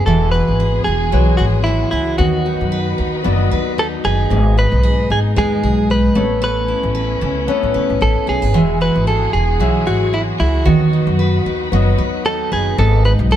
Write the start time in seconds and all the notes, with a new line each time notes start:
Already playing: C#4 E4 B4
0.06 E1 E3 G#3 B3 F#4 G#4 A4 E5
0.32 F#4 B4
0.48 G#1
0.60 G#4
0.84 E1 F#4 G#4
1.12 B1 F#3 G#3 F#4 B4
1.37 G#1 F#4 G#4
1.64 E4 F#4
1.91 C#2 E4 G#4
2.18 D#2 D#3 B3 D#4 F#4 B4 D#5
2.46 D#4
2.61 F#2
2.72 B4
2.98 D#2 D#4
3.24 F#1 F#3 B3 F#4 D5
3.32 D#5
3.51 D#2 B4
3.78 D#4 A4
4.04 F#1 G#4 B4
4.30 G#1 G#2 G#3 B3 G#4 D#5
4.57 D#4 B4
4.72 B1
4.83 G#4
5.10 G#1 D#4 G#4
5.36 D#2 G#3 B3 G#4 D#5
5.63 B1 G#4
5.90 D#4 B4
6.15 A1 A3 B3 C#4 A4 C#5
6.42 A3 B4
6.68 E4
6.83 A1
6.95 B4
7.21 C#2 E4
7.47 B3 C#4 A4 B4
7.63 A2
7.74 C#2 B4
7.90 A1
8.01 A1 E4 A4
8.27 B1 G#4 A4
8.42 G#1 B4
8.54 E1 E3 G#3 F#4 G#4 E5
8.81 F#4 B4
8.95 G#1
9.07 G#4 A4
9.33 E1 F#4 G#4
9.59 B1 F#3 G#3 F#4 E5
9.86 G#1 F#4 G#4
10.13 E4 F#4
10.40 C#2 E4 G#4
10.65 D#2 D#3 B3 D#4 F#4 B4 D#5
10.93 D#4
11.07 F#2
11.19 B4
11.46 D#2 D#4
11.72 F#1 F#3 B3 F#4 D#5
11.98 D#2 B4
12.25 D#4 A4
12.52 F#1 G#4 B4
12.78 G#1 G#2 G#3 B3 G#4 A4 D#5
13.05 D#4 B4
13.19 B1
13.31 G#4 A4